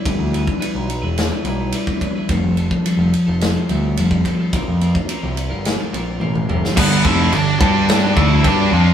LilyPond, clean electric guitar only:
\new Staff \with { instrumentName = "Clean electric guitar" } { \time 4/4 \key f \lydian \tempo 4 = 107 <g d' e' b'>8 <g d' e' b'>8 <g d' e' b'>16 <d' e' b'>8 <d' e' b'>8 <d' e' b'>16 <g d' e' b'>8 <g d' e' b'>8 <g d' e' b'>16 <d' e' b'>16 | <f g c' f' a'>8 <g c' f' a'>8 <f g c' f' a'>16 <c' f' a'>8 <c' f' a'>8 <c' f' a'>16 <g c' f' a'>8 <f g c' f' a'>8 <g c' f' a'>16 <c' f' a'>16 | <bes c' f' bes'>8 <bes c' f' bes'>8 <bes c' f' bes'>16 <c' f' bes'>8 <c' f' bes'>8 <c' f' bes'>16 <bes c' f' bes'>8 <bes c' f' bes'>8 <bes c' f' bes'>16 <c' f' bes'>16 | r1 | }